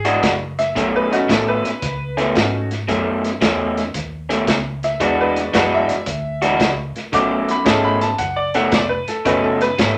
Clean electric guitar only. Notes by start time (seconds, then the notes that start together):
0.05 E3 G#3 D4 F#4
0.75 B2 D#3 A3 C#4
1.28 B2 D#3 A3 C#4
2.17 B2 D#3 A3 C#4
2.88 B2 D#3 A3 C#4
3.41 B2 D#3 A3 C#4
4.29 B2 D#3 A3 C#4
5.00 E3 G#3 D4 F#4
5.53 E3 G#3 D4 F#4
6.42 E3 G#3 D4 F#4
7.13 B2 D#3 A3 C#4
7.66 B2 D#3 A3 C#4
8.55 B2 D#3 A3 C#4
9.25 B2 D#3 A3 C#4
9.78 B2 D#3 A3 C#4